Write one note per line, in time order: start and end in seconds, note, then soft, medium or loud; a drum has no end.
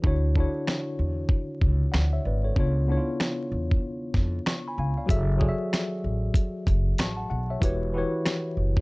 0.02 0.43 D2 loud
0.02 0.28 D3 medium
0.02 0.28 D4 medium
0.02 0.29 E4 medium
0.02 0.29 F#4 medium
0.02 kick loud
0.07 0.30 C#5 medium
0.35 1.26 D3 medium
0.35 1.27 D4 medium
0.35 1.27 E4 medium
0.35 1.28 F#4 medium
0.35 kick medium
0.40 1.28 C#5 medium
0.67 cross-stick medium
0.67 snare loud
0.99 1.23 E2 medium
1.29 kick medium
1.61 1.86 C#2 medium
1.61 kick medium
1.92 2.17 D2 medium
1.92 2.11 D5 medium
1.92 2.11 F#5 medium
1.92 cross-stick medium
1.92 snare loud
2.13 2.25 C#5 medium
2.13 2.24 E5 medium
2.25 2.49 G#1 loud
2.25 2.44 B4 medium
2.25 2.44 D5 medium
2.44 2.75 A4 medium
2.44 2.59 C#5 medium
2.55 2.95 C#2 loud
2.55 2.80 C#3 medium
2.55 2.81 B3 medium
2.55 2.81 D4 medium
2.55 2.82 F4 medium
2.55 kick loud
2.60 2.83 C#5 medium
2.87 3.78 C#3 medium
2.87 3.79 B3 medium
2.87 3.79 D4 medium
2.87 2.97 E4 medium
2.92 3.80 C#5 medium
2.97 3.83 F4 medium
3.20 cross-stick loud
3.20 snare loud
3.52 3.75 E2 medium
3.71 kick medium
4.14 4.38 F2 medium
4.14 kick medium
4.14 snare soft
4.46 4.65 C#6 medium
4.46 cross-stick medium
4.46 snare loud
4.68 4.78 G#5 medium
4.68 4.78 B5 medium
4.78 4.93 C#2 medium
4.78 4.96 F5 medium
4.78 4.97 G#5 medium
4.97 5.27 D5 medium
4.97 5.27 F5 medium
5.06 5.48 F#1 loud
5.06 5.32 F#3 medium
5.06 5.33 F#4 medium
5.06 5.33 G#4 medium
5.06 5.34 A4 medium
5.06 kick loud
5.10 5.34 E5 loud
5.10 closed hi-hat loud
5.37 6.30 F#3 medium
5.37 6.30 F#4 medium
5.37 6.31 G#4 medium
5.37 6.31 A4 medium
5.37 kick medium
5.42 5.49 D5 medium
5.49 6.35 E5 medium
5.73 cross-stick medium
5.73 snare loud
5.73 closed hi-hat medium
6.04 6.28 A1 medium
6.34 kick medium
6.34 closed hi-hat medium
6.67 6.91 F#1 loud
6.67 kick medium
6.67 closed hi-hat medium
6.98 7.23 A1 medium
6.98 7.15 A5 soft
6.98 7.18 C#6 medium
6.98 cross-stick medium
6.98 snare loud
6.98 closed hi-hat medium
7.16 7.29 F#5 medium
7.16 7.29 A5 medium
7.30 7.54 B1 medium
7.30 7.49 F#5 medium
7.50 7.64 C#5 medium
7.50 7.80 E5 medium
7.60 8.01 E1 loud
7.60 7.85 E3 medium
7.60 7.86 E4 medium
7.60 7.86 F#4 medium
7.60 7.87 G4 medium
7.60 7.87 B4 medium
7.60 kick loud
7.60 closed hi-hat loud
7.65 7.88 C#5 loud
7.93 8.81 E3 medium
7.93 8.81 E4 medium
7.93 8.81 F#4 medium
7.93 8.81 G4 medium
7.93 8.81 B4 medium
7.98 8.81 C#5 medium
8.26 cross-stick loud
8.26 snare loud
8.26 closed hi-hat medium
8.57 8.81 F#1 medium
8.77 kick medium